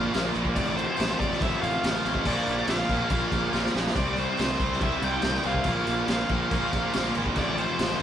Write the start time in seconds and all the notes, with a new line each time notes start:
Already playing: A#2 F3 A#3 D4 F4 A#4 D5 F5
0.14 A#1 A#2 F3 A#3, snare, tambourine, crash
0.34 A#1 A#2 F3 A#3, tambourine, crash
0.45 kick
0.54 A1 F3 C4 F4 A4 C5 D5, kick, tambourine, crash
0.59 F2 C3 F3
0.77 C5, tambourine, crash
0.97 A1 F2 C3 F3, snare, tambourine, crash
1.20 A1 F2 C3 F3 D5, kick, crash
1.33 snare
1.41 A1 F2 C3 F3 E5, kick, crash
1.62 A1 F5, tambourine, crash
1.83 A1 F2 C3 F3, snare, tambourine, crash
2.05 A1 F2 C3 F3, tambourine, crash
2.15 kick
2.25 A#1 A#2 F3 A#3 D4 F4 A#4 D5, kick, tambourine, crash
2.47 A#1, tambourine, crash
2.67 A#1 A#2 F3 A#3 F5, snare, tambourine, crash
2.89 A#1 A#2 F3 A#3, kick, crash
3.01 tambourine
3.10 A#1 A#2 F3 A#3, kick, crash
3.32 A#1, kick, tambourine, crash
3.44 tambourine
3.53 A#1 A#2 F3 A#3, snare, tambourine
3.66 snare
3.74 A#1 A#2 F3 A#3, snare, tambourine
3.87 snare
3.95 C2 C3 G3 C4 E4 G4 C5 D5, kick, tambourine, crash
4.16 C5, tambourine, crash
4.37 C2 C3 G3 C4, snare, tambourine, crash
4.59 C2 C3 G3 C4, kick, crash
4.73 snare
4.81 C2 C3 G3 C4 E5, kick, crash
5.02 C2 G5, tambourine, crash
5.22 C2 C3 G3 C4, snare, tambourine, crash
5.43 C2 C3 G3 C4 F5, tambourine, crash
5.55 kick
5.64 A#1 A#2 F3 D4 F4 A#4 D5, kick, tambourine, crash
5.68 A#3
5.86 A#1, tambourine, crash
6.08 A#1 A#2 F3 A#3 F5, snare, tambourine, crash
6.29 A#1 A#2 F3 A#3, kick, crash
6.51 A#1 A#2 F3 A#3, kick, crash
6.73 A#1, kick, tambourine, crash
6.93 A#1 A#2 F3 A#3, snare, tambourine, crash
7.14 G#1 A#2 F3, tambourine, crash
7.19 A#3
7.26 kick
7.35 A1 F2 C3 F3 C4 F4 A4 C5 D5, kick, tambourine, crash
7.58 C5, tambourine, crash
7.79 A1 F2 C3 F3, snare, tambourine, crash